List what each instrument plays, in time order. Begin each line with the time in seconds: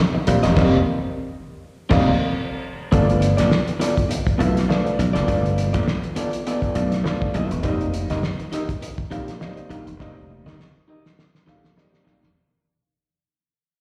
0.15 muted clean electric guitar stroke
0.27 slap bass A#1, upright piano G3 A#3 C4 F4, closed hi-hat
0.43 slap bass E1, clean electric guitar C4 G4 A#4 D#5, snare, closed hi-hat
0.55 slap bass F1, upright piano G3 A#3 C4, clean electric guitar C4 G4 A#4 D#5, kick, snare, crash
1.89 slap bass F1, upright piano G3 A#3 C4 F4, clean electric guitar C4 G4 A#4 D#5, kick, snare, crash
2.92 slap bass G1, upright piano F3 A3 A#3 D4, clean electric guitar B3 F4 A4 D5, kick, closed hi-hat
2.99 upright piano B3
3.08 muted clean electric guitar stroke, closed hi-hat
3.20 muted clean electric guitar stroke, closed hi-hat
3.37 slap bass A#1, clean electric guitar B3 F4 A4 D5, snare, closed hi-hat
3.51 muted clean electric guitar stroke, snare
3.68 closed hi-hat
3.80 clean electric guitar B3 F4 A4 D5, snare, closed hi-hat
3.96 muted clean electric guitar stroke, kick, closed hi-hat
4.09 muted clean electric guitar stroke, closed hi-hat
4.27 kick, closed hi-hat
4.38 slap bass B1, upright piano F3 A3 B3 E4, clean electric guitar B3 F4 A4 E5, closed hi-hat
4.55 muted clean electric guitar stroke, snare, closed hi-hat
4.68 upright piano F3 A3 B3 D4, muted clean electric guitar stroke, snare
4.85 muted clean electric guitar stroke, closed hi-hat
4.99 slap bass B1, closed hi-hat
5.13 slap bass F#1, clean electric guitar B3 F4 A4 D5, snare, closed hi-hat
5.27 slap bass G1, upright piano F3 A3 B3 D4, clean electric guitar B3 F4 A4 D5, kick, closed hi-hat
5.44 muted clean electric guitar stroke, closed hi-hat
5.57 muted clean electric guitar stroke, closed hi-hat
5.73 slap bass A#1, clean electric guitar B3 F4 A4 D5, kick, snare, closed hi-hat
5.87 muted clean electric guitar stroke, snare
6.03 closed hi-hat
6.16 clean electric guitar B3 F4 A4 D5, closed hi-hat
6.33 muted clean electric guitar stroke, closed hi-hat
6.47 clean electric guitar B3 F4 A4 D5, closed hi-hat
6.62 kick, closed hi-hat
6.75 slap bass B1, upright piano F3 A3 B3 D4, muted clean electric guitar stroke, closed hi-hat
6.91 muted clean electric guitar stroke, snare, closed hi-hat
7.04 upright piano F3 A3 B3 D4 B4, snare
7.21 muted clean electric guitar stroke, kick
7.34 slap bass B1, clean electric guitar B3 F4 A4 E5, closed hi-hat
7.51 slap bass E1, muted clean electric guitar stroke, closed hi-hat
7.63 slap bass F1, upright piano G3 A#3 C4 D#4, clean electric guitar D#4 G4 A#4 D#5, kick, closed hi-hat
7.80 muted clean electric guitar stroke, closed hi-hat
7.93 muted clean electric guitar stroke, closed hi-hat
8.10 slap bass G1, clean electric guitar D#4 G4 A#4 D#5, snare, closed hi-hat
8.23 muted clean electric guitar stroke, snare
8.40 closed hi-hat
8.52 clean electric guitar D#4 G4 A#4 D#5, snare, closed hi-hat
8.69 muted clean electric guitar stroke, kick, closed hi-hat
8.82 muted clean electric guitar stroke, closed hi-hat
8.98 kick, closed hi-hat
9.10 slap bass A#1, upright piano G3 A#3 C4 F4, clean electric guitar D#4 G4 A#4 F5, closed hi-hat
9.28 muted clean electric guitar stroke, snare, closed hi-hat
9.40 upright piano G3 A#3 C4 D#4, snare
9.57 muted clean electric guitar stroke, closed hi-hat
9.70 slap bass A#1, clean electric guitar D#4 G4 A#4 F5, closed hi-hat
9.87 slap bass E1, muted clean electric guitar stroke, closed hi-hat
9.99 slap bass F1, upright piano G3 A#3 C4 D#4, clean electric guitar D#4 G4 A#4 D#5, kick, snare
10.16 muted clean electric guitar stroke
10.30 muted clean electric guitar stroke
10.46 slap bass G1, clean electric guitar D#4 G4 A#4 D#5, snare
10.59 muted clean electric guitar stroke, snare
10.88 clean electric guitar D#4 G4 A#4 D#5
11.04 muted clean electric guitar stroke, snare
11.19 muted clean electric guitar stroke, snare
11.35 snare
11.46 slap bass A#1, upright piano G3 A#3 C4 F4 A4, clean electric guitar D#4 G4 A#4 F5, snare
11.63 muted clean electric guitar stroke, snare
11.77 upright piano G3 A#3 C4 D#4 A#4, snare
11.92 muted clean electric guitar stroke, snare
12.04 slap bass A#1, clean electric guitar D#4 G4 A#4 F5, upright piano D5, snare
12.21 slap bass E1, muted clean electric guitar stroke, snare